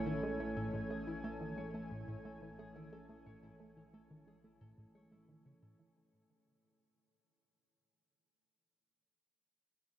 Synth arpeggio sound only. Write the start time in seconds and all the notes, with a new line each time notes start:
0.06 D#3
0.23 G#3
0.40 A3
0.57 A2
0.74 A2
0.90 A3
1.07 E3
1.24 A3
1.41 D#3
1.58 G#3
1.74 A3
1.91 A2
2.08 A2
2.25 A3
2.42 E3
2.59 A3
2.76 D#3
2.92 G#3
3.09 A3
3.26 A2
3.43 A2
3.60 A3
3.77 E3
3.93 A3
4.10 D#3
4.27 G#3
4.44 A3
4.61 A2
4.78 A2
4.95 G#3
5.12 G#3
5.29 D#3
5.45 C#3
5.62 A2
5.79 E3